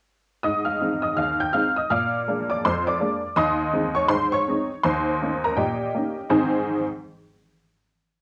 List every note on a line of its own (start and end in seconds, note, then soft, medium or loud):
0.43 0.76 G#2 medium
0.43 0.65 D#5 medium
0.43 0.66 D#6 medium
0.65 1.00 F5 medium
0.65 1.02 F6 medium
0.80 1.01 G#3 soft
0.80 1.02 C4 soft
0.80 1.02 D#4 soft
1.02 1.17 D#5 medium
1.02 1.17 D#6 medium
1.17 1.48 D#2 medium
1.17 1.39 F5 medium
1.17 1.39 F6 medium
1.40 1.54 G5 medium
1.40 1.55 G6 medium
1.53 1.74 G#3 soft
1.53 1.75 C4 soft
1.53 1.74 D#4 medium
1.53 1.75 F5 medium
1.53 1.76 F6 medium
1.76 1.91 D#5 medium
1.76 1.91 D#6 medium
1.90 2.22 A#2 medium
1.90 2.45 F5 medium
1.90 2.46 D6 medium
1.90 2.49 F6 medium
2.28 2.48 G#3 soft
2.28 2.48 A#3 soft
2.28 2.48 D4 soft
2.50 2.64 D5 medium
2.50 2.64 D6 medium
2.65 2.96 F2 medium
2.65 2.85 C5 medium
2.65 2.86 C6 medium
2.87 3.35 D5 medium
2.87 3.38 D6 medium
3.00 3.20 G#3 medium
3.00 3.21 A#3 soft
3.00 3.21 D4 medium
3.36 3.67 D#2 medium
3.36 3.91 D#5 medium
3.36 3.91 C6 medium
3.36 3.95 D#6 loud
3.73 3.93 G#3 soft
3.73 3.94 C4 medium
3.73 3.94 D#4 medium
3.95 4.09 C#5 medium
3.95 4.10 C#6 medium
4.09 4.40 G#2 medium
4.09 4.30 C5 medium
4.09 4.31 C6 loud
4.32 4.80 C#5 medium
4.32 4.83 C#6 medium
4.48 4.68 G#3 medium
4.48 4.68 C4 medium
4.48 4.68 D#4 medium
4.83 5.15 D#2 medium
4.83 5.39 C5 medium
4.83 5.42 C6 medium
5.22 5.42 A#3 soft
5.22 5.42 C#4 soft
5.22 5.42 D#4 medium
5.44 5.57 A#4 medium
5.44 5.58 A#5 medium
5.57 5.88 A#2 medium
5.57 6.27 G4 medium
5.57 6.27 D#5 medium
5.57 6.30 G5 medium
5.95 6.14 A#3 soft
5.95 6.15 C#4 soft
5.95 6.15 D#4 soft
6.30 6.72 G#2 loud
6.30 6.72 D#3 medium
6.30 6.72 C4 medium
6.30 6.72 D#4 medium
6.30 6.72 G#4 medium
6.30 6.72 C5 medium
6.30 6.73 G#5 medium